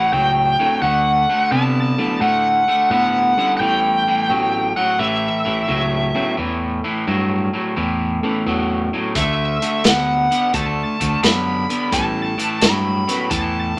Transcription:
Already playing: clean electric guitar A2 E3, lead electric guitar F#5
0.12 fingered electric bass C#2, clean electric guitar A2 F#3, lead electric guitar G5
0.59 clean electric guitar A2 F#3, reed electric piano F#3 C4 D4 E4 A4
0.82 fingered electric bass D2, clean electric guitar D3 A3, lead electric guitar F#5
1.30 clean electric guitar D3 A3
1.51 fingered electric bass C3, clean electric guitar D3 B3, lead electric guitar A5
1.98 clean electric guitar D3 B3, reed electric piano F#3 A3 D4 E4 A4
2.21 fingered electric bass A2, clean electric guitar D3 A3, lead electric guitar F#5
2.68 clean electric guitar D3 A3
2.90 fingered electric bass A2, clean electric guitar D3 B3, lead electric guitar F#5
3.37 clean electric guitar D3 B3, reed electric piano G3 B3 C#4 E4 A4
3.57 fingered electric bass A1, clean electric guitar A2, lead electric guitar F#5 G5
3.61 clean electric guitar E3
4.08 clean electric guitar A2 E3
4.29 fingered electric bass A1, clean electric guitar A2 F#3, reed electric piano A3 B3 C#4 E4 A4
4.77 clean electric guitar A2 F#3, lead electric guitar F#5
4.99 fingered electric bass A1, clean electric guitar A2 E3, lead electric guitar E5
5.45 fingered electric bass A1, clean electric guitar A2 E3
5.68 fingered electric bass C#2, clean electric guitar A2 F#3
6.14 clean electric guitar A2 F#3, reed electric piano A3 B3 C#4 E4 G5
6.37 fingered electric bass E2, clean electric guitar A2 E3
6.84 clean electric guitar A2 E3
7.07 fingered electric bass G2, clean electric guitar A2 F#3
7.53 clean electric guitar A2 F#3
7.76 fingered electric bass E2, clean electric guitar A2 E3
8.23 clean electric guitar A2 E3, reed electric piano A3 B3 C#4 E4 A4
8.46 fingered electric bass E2, clean electric guitar A2 F#3
8.94 clean electric guitar A2 F#3
9.15 fingered electric bass D2, clean electric guitar D3 A3, lead electric guitar E5, kick, snare, closed hi-hat
9.62 clean electric guitar D3 A3, closed hi-hat
9.84 fingered electric bass D2, clean electric guitar D3 B3, lead electric guitar F#5, snare, closed hi-hat
10.31 clean electric guitar D3 B3, closed hi-hat
10.53 fingered electric bass D2, clean electric guitar D3 A3, lead electric guitar A5, kick, closed hi-hat
11.00 fingered electric bass D2, clean electric guitar D3 A3, kick, closed hi-hat
11.23 fingered electric bass F#2, clean electric guitar D3 B3, lead electric guitar B5, snare, closed hi-hat
11.70 clean electric guitar D3 B3, closed hi-hat
11.91 fingered electric bass A1, clean electric guitar A2 E3, reed electric piano G3 B3 C#4 E4 A4, lead electric guitar A5, kick, snare, closed hi-hat
12.38 clean electric guitar A2 E3, closed hi-hat
12.61 fingered electric bass G2, clean electric guitar A2 F#3, lead electric guitar B5, snare, closed hi-hat
13.08 clean electric guitar A2 F#3, reed electric piano A3 B3 C#4 E4 B4, snare, closed hi-hat
13.30 fingered electric bass E2, clean electric guitar A2 E3, lead electric guitar A5, kick, closed hi-hat

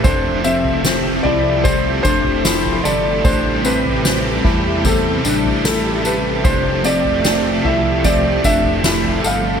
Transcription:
Already playing: string machine C3 G4
0.04 analog synth bass F1, overdriven electric guitar F3 A3 C4 E4 A4, string machine F3 A3, clean electric guitar D4, felt piano C5, kick, floor tom, tambourine
0.44 overdriven electric guitar C4 E4 A4, felt piano E5, tambourine
0.65 floor tom
0.84 overdriven electric guitar A3 C4 E4 A4, snare, tambourine
1.23 analog synth bass C2, overdriven electric guitar C4 E4 A4, felt piano D5, floor tom
1.64 overdriven electric guitar F3 A3 C4 E4 A4, felt piano C5, kick, floor tom, tambourine
2.03 analog synth bass F1, clean electric guitar D4, overdriven electric guitar E4 A4, felt piano C5, kick, tambourine
2.07 overdriven electric guitar C4
2.25 floor tom
2.45 overdriven electric guitar A3 C4 E4 A4, snare, tambourine
2.65 floor tom
2.84 analog synth bass G1, overdriven electric guitar E4 A4, felt piano D5, tambourine
2.88 overdriven electric guitar C4
3.24 analog synth bass A1, overdriven electric guitar A2 E3 G3 C4 E4 A4, string machine G3 A3, clean electric guitar D4, felt piano C5, kick, floor tom, tambourine
3.64 overdriven electric guitar G3 C4 E4 A4, felt piano B4, tambourine
3.85 floor tom
4.05 overdriven electric guitar G3 C4 E4 A4, snare, tambourine
4.45 analog synth bass E2, overdriven electric guitar G3 C4 E4 A4, kick, floor tom
4.85 overdriven electric guitar A2 E3 G3 C4 E4 A4, felt piano A4, kick, floor tom, tambourine
5.24 analog synth bass A1, overdriven electric guitar G3 C4 E4 A4, clean electric guitar D4, tambourine
5.45 floor tom
5.64 overdriven electric guitar G3 C4 E4 A4, felt piano A4, snare, tambourine
6.04 overdriven electric guitar G3 C4 E4 A4, felt piano B4, tambourine
6.43 analog synth bass F1, overdriven electric guitar F3 A3 C4 E4 A4, string machine F3, clean electric guitar D4, felt piano C5, kick, floor tom, tambourine
6.84 overdriven electric guitar C4 E4 A4, felt piano D5, tambourine
7.05 floor tom
7.23 overdriven electric guitar A3 C4 E4 A4, snare, tambourine
7.63 analog synth bass C2, overdriven electric guitar C4 E4 A4, felt piano E5, floor tom
8.04 overdriven electric guitar F3 A3 C4 E4 A4, felt piano D5, kick, floor tom, tambourine
8.44 analog synth bass F1, overdriven electric guitar C4 E4 A4, clean electric guitar D4, felt piano E5, kick, tambourine
8.64 floor tom
8.84 overdriven electric guitar A3 C4 E4 A4, snare, tambourine
9.04 floor tom
9.24 analog synth bass G1, overdriven electric guitar C4 A4, felt piano F5, tambourine

